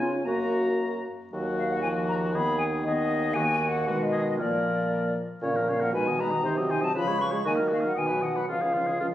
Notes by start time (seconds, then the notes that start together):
Already playing: C#3 G#5
0.00 C#4 F4
0.25 F#2 A#3 F#4 A#5
1.32 D#2 F#3 A#3 F#4
1.58 F5
1.70 F#5
1.82 F3 G#5
2.09 A#5
2.34 D#3 B3 G#4 B5
2.58 G#5
2.84 D#3 B3 G#4 D#5
3.34 D#2 D#3 A#3 F#4 G#5
3.69 F#5
3.87 B2 D#3 G#3 F#4
4.03 D#5
4.12 G#4
4.38 A#2 F3 A#3 A#4 D5
5.42 A#2 C#3 C#4 C#5
5.56 F3 A#3 A#4
5.68 C#3 C#4 C#5 F5
5.80 F3 A#3 A#4 F#5
5.92 B2 G#3 D#4 B4 G#5
6.07 D#3 B3 D#5
6.20 G#3 D#4 B4 A#5
6.31 D#3 B3 D#5
6.44 C3 D#3 D#4 C5
6.57 F#3 C4 D#5
6.69 D#3 D#4 C5 G#5
6.81 F#3 C4 D#5 A5
6.95 C#3 F3 F4 B4 B5
7.08 G#3 G#4 C#5
7.18 F3 F4 B4 C#6
7.31 G#3 G#4 C#5
7.45 D#3 A#3 D#4 F#4 G#5
7.56 F#4 A#4
7.61 F#3
7.68 F#4
7.72 A#3 D#4 F5
7.81 F#4 A#4
7.85 F#3 F#5
7.95 B2 D#3 D#4 D#5 G#5
8.07 F#3 F#4 B4
8.22 D#3 D#4 D#5 F#5
8.36 F#3 F#4 B4
8.48 C#2 F3 C#4 F4 F5
8.61 C#3 F4 G#4
8.74 F3 C#4 F4
8.87 C#3 F4 G#4
9.00 C#2 F3 C#4 F4